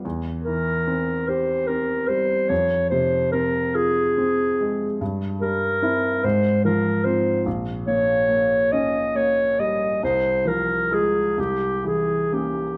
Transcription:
<<
  \new Staff \with { instrumentName = "Clarinet" } { \time 6/8 \key f \minor \tempo 4. = 48 r8 bes'4 c''8 bes'8 c''8 | des''8 c''8 bes'8 aes'4. | r8 bes'4 c''8 bes'8 c''8 | r8 des''4 ees''8 des''8 ees''8 |
c''8 bes'8 aes'8 g'8 aes'8 g'8 | }
  \new Staff \with { instrumentName = "Grand piano" } { \clef bass \time 6/8 \key f \minor e,8 e8 c'8 g'8 c'8 g8 | f,8 c8 c'8 f'8 c'8 aes8 | g,8 g8 <c' e'>8 aes,8 f8 <c' f'>8 | bes,,8 bes,8 bes8 des'8 bes8 g8 |
c,8 f8 <aes f'>8 c,8 e8 <bes des'>8 | }
>>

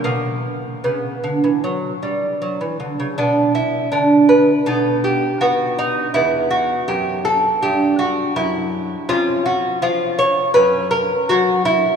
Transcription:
<<
  \new Staff \with { instrumentName = "Lute" } { \time 4/4 \key b \minor \tempo 4 = 81 << { ais4 b2 r4 | d'8 e'8 d'8 b'8 a'8 g'8 fis'8 dis'8 | e'8 fis'8 g'8 a'8 g'8 fis'8 e'4 | eis'8 fis'8 eis'8 cis''8 b'8 ais'8 fis'8 e'8 | } \\ { r1 | r2 dis'2 | b1 | cis'2 cis'2 | } >> }
  \new Staff \with { instrumentName = "Lute" } { \clef bass \time 4/4 \key b \minor b,4 cis8 d16 e16 fis8 g8 fis16 e16 d16 cis16 | b,4 d4 b,4 b4 | e,4 fis,4 g,4 fis,4 | eis,4 eis4 fis,4 fis4 | }
>>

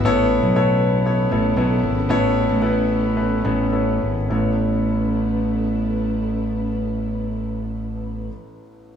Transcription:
<<
  \new Staff \with { instrumentName = "Grand piano" } { \time 4/4 \key a \major \tempo 4 = 102 <b e' a' cis''>8. r16 <b e' a' cis''>8. r16 <b e' a' cis''>8 <b e' a' cis''>8 <b e' a' cis''>8. r16 | <b e' a' cis''>8. r16 <b e' a' b'>8. r16 <b e' a' b'>8 <b e' a' cis''>8 <b e' a' cis''>8. r16 | <b e' a' cis''>1~ | <b e' a' cis''>1 | }
  \new Staff \with { instrumentName = "Grand piano" } { \clef bass \time 4/4 \key a \major a,4. r2 r8 | a,4. r2 r8 | a,,1~ | a,,1 | }
  \new Staff \with { instrumentName = "String section" } { \time 4/4 \key a \major << { <cis a e'>1~ | <cis a e'>1 | <cis a b e'>1~ | <cis a b e'>1 | } \\ { b1 | cis'1 | r1 | r1 | } >> }
  \new Staff \with { instrumentName = "Picked electric bass" } { \clef bass \time 4/4 \key a \major a,,8. b,,4.~ b,,16 a,,8 b,,8 gis,,8 | a,,8. a,,4.~ a,,16 a,,4 gis,,8 | a,,1~ | a,,1 | }
>>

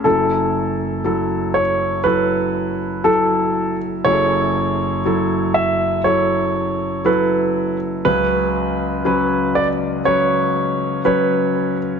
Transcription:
<<
  \new Staff \with { instrumentName = "Grand piano" } { \time 4/4 \key fis \minor \tempo 4 = 60 a'4. cis''8 b'4 a'8. r16 | cis''4. e''8 cis''4 b'8. r16 | b'4. d''8 cis''4 b'8. r16 | }
  \new Staff \with { instrumentName = "Grand piano" } { \time 4/4 \key fis \minor <fis e' a'>4 <fis e' a'>4 <fis e' a'>4 <fis e' a'>4 | <fis e' gis' a'>4 <fis e' a'>4 <fis e' a'>4 <fis e' a'>4 | <fis cis' b'>4 <fis cis' b'>4 <fis cis' b'>4 <fis cis' cis''>4 | }
  \new Staff \with { instrumentName = "Grand piano" } { \clef bass \time 4/4 \key fis \minor <fis,, fis,>1 | <fis,, fis,>1 | <cis, cis>1 | }
>>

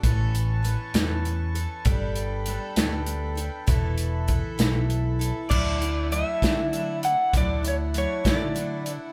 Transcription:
<<
  \new Staff \with { instrumentName = "Accordion" } { \time 6/8 \key e \dorian \tempo 4. = 66 << { cis'''2. | b''2.~ | b''2. | \key d \lydian fis''2.~ |
fis''2. | } \\ { <b' a''>2. | <a' g''>2. | <a' e''>2. | <d' e'>2.~ |
<d' e'>2. | } >> }
  \new Staff \with { instrumentName = "Electric slide guitar" } { \time 6/8 \key e \dorian r2. | r2. | r2. | \key d \lydian d''4 e''4. fis''8 |
d''8 cis''8 cis''8 d''4 r8 | }
  \new Staff \with { instrumentName = "Steel-string acoustic guitar" } { \time 6/8 \key e \dorian <a, e b cis' a'>4 <e b cis' a'>8 <a, e b cis' a'>4 <b cis' a'>8 | <g b d' a'>4 <g b d' a'>8 <g b d' a'>4 <b d' a'>8 | <e, b, e b e' a'>4 <e b e' a'>8 <e, b, e b e' a'>4 <e b e' a'>8 | \key d \lydian <d fis a d' e'>8 <a d' e'>8 <fis a d' e'>8 <d fis a d' e'>8 <fis a d' e'>8 <a d' e'>8 |
<d fis a d' e'>8 <a d' e'>8 <fis a d' e'>8 <d fis a d' e'>8 <fis a d' e'>8 <a d' e'>8 | }
  \new Staff \with { instrumentName = "Picked electric bass" } { \clef bass \time 6/8 \key e \dorian a,,4. e,4. | g,,4. d,4. | e,,4. b,,4. | \key d \lydian d,4. d4. |
d,4. d4. | }
  \new DrumStaff \with { instrumentName = "Drums" } \drummode { \time 6/8 <hh bd>8 hh8 hh8 <hh sn>8 hh8 hh8 | <hh bd>8 hh8 hh8 <hh sn>8 hh8 hh8 | <hh bd>8 hh8 <hh bd>8 <hh sn>8 hh8 hh8 | <cymc bd>8 hh8 hh8 <hh bd sn>8 hh8 hh8 |
<hh bd>8 hh8 hh8 <hh bd sn>8 hh8 hh8 | }
>>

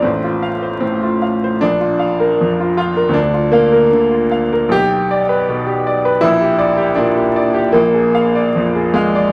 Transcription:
\new Staff \with { instrumentName = "Grand piano" } { \time 2/4 \key bes \major \tempo 4 = 77 << { a,,16 f'16 f''16 c''16 a,16 f'16 f''16 c''16 | bes,,16 f'16 f''16 bes'16 f,16 f'16 f''16 bes'16 | d,16 f'16 f''16 bes'16 d16 f'16 f''16 bes'16 | \key g \lydian b,,16 g'16 d''16 b'16 b,16 g'16 d''16 b'16 |
bes,,16 g'16 d''16 g'16 bes,16 g'16 d''16 g'16 | bes,,16 aes'16 f''16 d''16 f,16 aes'16 f''16 d''16 | } \\ { c'4 c'4 | d'4. f'8 | d'8 bes4. | g'2 |
e'4 d'8 r8 | bes4. aes8 | } >> }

